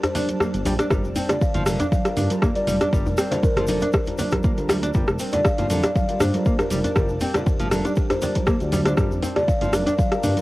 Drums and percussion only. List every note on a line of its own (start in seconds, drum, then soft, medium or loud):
0.04 cross-stick medium
0.04 closed hi-hat soft
0.04 djembe tone medium
0.04 shaker soft
0.15 open hi-hat medium
0.15 djembe slap medium
0.15 high conga medium
0.15 low conga medium
0.15 shaker medium
0.29 closed hi-hat medium
0.29 high conga loud
0.29 shaker soft
0.40 cross-stick medium
0.40 djembe tone medium
0.40 high conga loud
0.40 shaker medium
0.54 closed hi-hat soft
0.54 shaker soft
0.65 open hi-hat medium
0.65 djembe slap medium
0.65 djembe tone medium
0.65 high conga medium
0.65 shaker medium
0.79 cross-stick medium
0.79 closed hi-hat medium
0.79 shaker soft
0.90 kick loud
0.90 cross-stick medium
0.90 djembe tone medium
0.90 shaker medium
1.04 shaker soft
1.16 open hi-hat medium
1.16 djembe tone loud
1.16 shaker medium
1.29 cross-stick medium
1.29 closed hi-hat medium
1.29 djembe slap medium
1.29 low conga loud
1.29 shaker soft
1.42 kick loud
1.42 shaker medium
1.54 closed hi-hat soft
1.54 djembe tone medium
1.54 low conga loud
1.54 shaker soft
1.66 cross-stick medium
1.66 open hi-hat loud
1.66 high conga medium
1.66 shaker loud
1.80 closed hi-hat medium
1.80 djembe slap medium
1.80 djembe tone medium
1.80 shaker soft
1.92 kick loud
1.92 high conga loud
1.92 shaker medium
2.05 cross-stick medium
2.05 closed hi-hat soft
2.05 shaker soft
2.17 open hi-hat medium
2.17 djembe tone medium
2.17 low conga loud
2.17 shaker medium
2.30 closed hi-hat medium
2.30 high conga loud
2.30 shaker soft
2.42 kick loud
2.42 cross-stick loud
2.42 djembe tone loud
2.42 shaker medium
2.55 closed hi-hat soft
2.55 shaker soft
2.67 open hi-hat medium
2.67 high conga medium
2.67 low conga loud
2.67 shaker medium
2.80 cross-stick medium
2.80 closed hi-hat medium
2.80 djembe tone medium
2.80 shaker soft
2.93 kick loud
2.93 shaker medium
3.06 djembe tone loud
3.06 shaker soft
3.18 cross-stick loud
3.18 open hi-hat medium
3.18 shaker loud
3.31 closed hi-hat medium
3.31 djembe slap medium
3.31 low conga loud
3.31 shaker soft
3.43 kick loud
3.43 djembe tone medium
3.43 shaker medium
3.56 cross-stick medium
3.56 closed hi-hat soft
3.56 low conga loud
3.56 shaker soft
3.67 open hi-hat medium
3.67 high conga medium
3.67 djembe tone medium
3.67 shaker loud
3.81 closed hi-hat medium
3.81 djembe slap medium
3.81 shaker soft
3.93 kick loud
3.93 cross-stick loud
3.93 shaker medium
4.06 closed hi-hat soft
4.06 djembe tone medium
4.06 shaker soft
4.18 open hi-hat medium
4.18 djembe slap medium
4.18 high conga medium
4.18 low conga medium
4.18 shaker medium
4.31 kick medium
4.31 cross-stick medium
4.31 closed hi-hat medium
4.31 djembe tone medium
4.31 high conga loud
4.31 shaker soft
4.44 kick loud
4.44 high conga loud
4.44 shaker soft
4.57 closed hi-hat soft
4.57 shaker soft
4.69 cross-stick medium
4.69 open hi-hat medium
4.69 djembe slap medium
4.69 djembe tone medium
4.69 high conga loud
4.69 shaker loud
4.83 closed hi-hat medium
4.83 shaker soft
4.94 kick loud
4.94 djembe tone medium
4.94 shaker medium
5.07 cross-stick medium
5.07 shaker soft
5.19 open hi-hat medium
5.19 shaker medium
5.33 closed hi-hat medium
5.33 djembe slap medium
5.33 djembe tone medium
5.33 low conga medium
5.33 shaker soft
5.45 kick loud
5.45 cross-stick loud
5.45 shaker medium
5.58 closed hi-hat soft
5.58 djembe tone medium
5.58 low conga loud
5.58 shaker soft
5.70 open hi-hat medium
5.70 high conga loud
5.70 shaker loud
5.83 cross-stick medium
5.83 closed hi-hat medium
5.83 djembe slap medium
5.83 shaker soft
5.95 kick loud
5.95 high conga loud
5.95 djembe tone medium
5.95 shaker medium
6.09 closed hi-hat soft
6.09 shaker soft
6.20 cross-stick loud
6.20 open hi-hat medium
6.20 djembe tone loud
6.20 low conga medium
6.20 shaker loud
6.34 closed hi-hat medium
6.34 high conga loud
6.34 shaker soft
6.46 kick loud
6.46 shaker medium
6.59 cross-stick medium
6.59 closed hi-hat soft
6.59 djembe tone medium
6.59 shaker soft
6.70 open hi-hat medium
6.70 high conga loud
6.70 low conga medium
6.70 shaker loud
6.84 closed hi-hat medium
6.84 djembe tone medium
6.84 shaker soft
6.96 kick loud
6.96 cross-stick loud
6.96 shaker medium
7.09 shaker soft
7.21 open hi-hat medium
7.21 djembe tone medium
7.21 shaker medium
7.34 cross-stick medium
7.34 closed hi-hat medium
7.34 djembe slap medium
7.34 low conga medium
7.34 shaker soft
7.46 kick loud
7.46 djembe tone loud
7.46 shaker medium
7.60 closed hi-hat soft
7.60 low conga loud
7.60 shaker soft
7.71 cross-stick medium
7.71 open hi-hat medium
7.71 high conga loud
7.71 shaker loud
7.85 closed hi-hat medium
7.85 djembe slap medium
7.85 djembe tone medium
7.85 shaker soft
7.96 kick loud
7.96 shaker medium
8.10 cross-stick medium
8.10 closed hi-hat soft
8.10 djembe tone loud
8.10 shaker soft
8.22 open hi-hat medium
8.22 djembe slap medium
8.22 high conga medium
8.22 low conga loud
8.22 shaker medium
8.35 kick medium
8.35 closed hi-hat medium
8.35 high conga loud
8.35 shaker soft
8.47 kick loud
8.47 cross-stick loud
8.47 djembe tone medium
8.47 high conga medium
8.47 shaker soft
8.60 closed hi-hat soft
8.60 shaker soft
8.72 open hi-hat medium
8.72 djembe slap medium
8.72 high conga loud
8.72 djembe tone loud
8.72 shaker loud
8.86 cross-stick medium
8.86 closed hi-hat medium
8.86 shaker soft
8.97 kick loud
8.97 cross-stick medium
8.97 djembe tone medium
8.97 shaker medium
9.12 shaker soft
9.23 open hi-hat medium
9.23 djembe tone loud
9.23 shaker loud
9.36 cross-stick medium
9.36 closed hi-hat medium
9.36 djembe slap medium
9.36 low conga medium
9.36 shaker soft
9.48 kick loud
9.48 shaker medium
9.61 closed hi-hat soft
9.61 djembe tone medium
9.61 low conga loud
9.61 shaker soft
9.73 cross-stick medium
9.73 open hi-hat medium
9.73 high conga medium
9.73 shaker medium
9.87 closed hi-hat medium
9.87 djembe slap medium
9.87 djembe tone medium
9.87 shaker soft
9.99 kick loud
9.99 high conga loud
9.99 shaker medium
10.12 cross-stick medium
10.12 closed hi-hat soft
10.12 shaker soft
10.23 open hi-hat medium
10.23 djembe tone medium
10.23 low conga medium
10.23 shaker loud
10.37 closed hi-hat medium
10.37 high conga medium
10.37 shaker soft